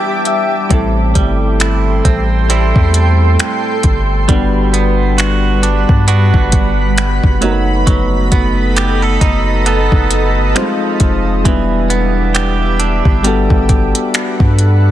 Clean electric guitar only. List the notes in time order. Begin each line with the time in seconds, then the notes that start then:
Already playing: E3 B3 D4 G4
0.71 A2
1.15 G3
1.60 E4
2.05 C4
2.49 G3 C4 E4
4.29 G3
4.73 B3
5.18 F#4
5.63 D4
6.08 B3 D4 F#4
7.42 F#3
7.87 F#3
8.32 B3
8.77 G4
9.02 A4
9.21 D#4
9.66 B3 D#4 A4
10.56 F3
11.45 E3
11.90 B3
12.34 G4
12.79 D4
13.24 G3